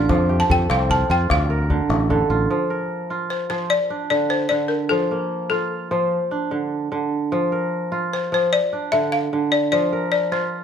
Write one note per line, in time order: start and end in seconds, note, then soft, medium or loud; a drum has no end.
0.00 0.15 D3 medium
0.00 0.89 F4 medium
0.00 0.49 A4 medium
0.00 0.41 F5 medium
0.09 0.42 F2 medium
0.09 1.35 F3 medium
0.09 calabash thump medium
0.09 calabash click medium
0.29 1.70 G4 medium
0.29 calabash click soft
0.40 0.49 A5 medium
0.50 0.66 F2 medium
0.50 1.56 A4 medium
0.50 0.71 G5 medium
0.50 calabash thump medium
0.60 calabash click soft
0.70 1.03 C2 medium
0.70 2.50 C4 medium
0.70 0.91 F5 medium
0.70 calabash click medium
0.89 1.09 F4 medium
0.89 1.09 A5 medium
0.89 calabash thump medium
1.10 1.26 F2 medium
1.10 2.30 F4 medium
1.10 1.29 G5 medium
1.30 1.79 D2 medium
1.30 2.07 F5 medium
1.30 calabash thump medium
1.30 calabash click medium
1.50 2.16 A#4 medium
1.70 2.09 D3 medium
1.70 calabash thump medium
1.89 2.23 A1 medium
1.89 calabash click medium
2.00 calabash click soft
2.10 2.55 D3 medium
2.10 2.76 A4 medium
2.10 calabash thump medium
2.10 calabash click soft
2.30 2.46 A1 medium
2.30 3.10 F4 medium
2.50 3.49 F3 medium
2.70 3.97 A#4 medium
3.10 4.62 F4 medium
3.30 3.49 C5 medium
3.50 3.76 F3 medium
3.50 3.69 C5 medium
3.50 4.69 C5 soft
3.70 4.09 D5 medium
3.90 5.58 D4 medium
4.10 4.49 D3 medium
4.10 4.31 D5 medium
4.30 4.51 C5 medium
4.49 4.96 D3 medium
4.49 4.71 D5 medium
4.68 4.91 A#4 medium
4.89 5.90 F3 medium
4.89 5.48 A4 medium
5.11 7.04 A#3 soft
5.50 7.02 F4 medium
5.50 6.27 A4 medium
5.91 6.17 F3 medium
5.91 7.10 C5 medium
6.31 7.99 D4 medium
6.51 6.90 D3 medium
6.92 7.37 D3 medium
7.32 8.31 F3 medium
7.52 8.79 A#4 soft
7.92 9.43 F4 medium
8.13 8.33 C5 medium
8.32 8.57 F3 medium
8.32 8.54 C5 medium
8.53 8.94 D5 medium
8.73 10.41 D4 soft
8.92 9.32 D3 medium
8.92 9.13 E5 medium
9.12 9.53 F5 medium
9.33 9.77 D3 medium
9.52 9.71 D5 medium
9.72 10.64 F3 medium
9.72 10.10 D5 medium
9.93 10.64 A#4 medium
10.12 10.30 D5 medium
10.32 10.64 F4 medium
10.32 10.64 C5 medium